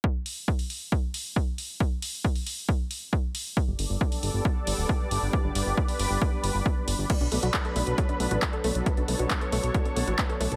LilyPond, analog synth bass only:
\new Staff \with { instrumentName = "Analog synth bass" } { \clef bass \time 4/4 \key b \minor \tempo 4 = 136 r1 | r1 | r16 g,,16 g,,16 g,,16 r8 g,,16 g,,16 r8 g,,16 d,,16 r8 g,,16 g,,16 | r16 g,,16 g,,16 g,,16 r8 g,,16 g,,16 r8 g,,16 g,,16 r8 g,,16 g,,16 |
r16 b,,16 b,,16 b,,16 r8 b,,16 b,,16 r8 b,,16 a,,16 r8 b,,16 b,,16 | r16 b,,16 b,,16 b,,16 r8 b,,16 b,,16 r8 b,,16 a,,16 r8 b,,16 b,,16 | }